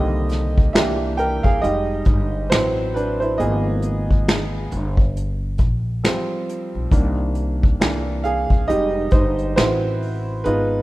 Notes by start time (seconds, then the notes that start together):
Already playing: C2 D3 D#3 A#3 G4 D#5
0.29 snare, closed hi-hat
0.58 kick
0.73 C2 E3 A#3 D4 G4 E5, finger snap, snare, closed hi-hat
1.17 A#4 G5, closed hi-hat
1.43 C2 G#4 F5, kick
1.62 F1 G3 G#3 D#4 G4 D#5, closed hi-hat
2.05 G1, kick, closed hi-hat
2.50 A1 F#3 C4 E4 B4 C5, finger snap, snare, closed hi-hat
2.94 D4 B4, closed hi-hat
3.20 E4 C5, closed hi-hat
3.38 G#1 F3 A#3 B3 G#4 D#5, closed hi-hat
3.82 closed hi-hat
4.11 kick
4.28 finger snap, snare, closed hi-hat
4.71 G1, closed hi-hat
4.97 kick
5.17 closed hi-hat
5.58 A#1, kick, closed hi-hat
6.04 F3 G3 C4, finger snap, snare, closed hi-hat
6.49 closed hi-hat
6.75 B1
6.92 C2 D#3 A#3 D4, kick, closed hi-hat
7.35 closed hi-hat
7.63 kick
7.80 C2 E3 A#3 D4, finger snap, snare, closed hi-hat
8.24 G#4 F5, closed hi-hat
8.50 C2, kick
8.68 F1 G3 G#3 D#4 G4 D#5, closed hi-hat
9.11 G1 D#4 C5, kick, closed hi-hat
9.38 closed hi-hat
9.56 A1 C4 E4 F#4 B4 C5, finger snap, snare, closed hi-hat
10.02 open hi-hat
10.44 G#1 G#3 B3 D#4 F4 B4, closed hi-hat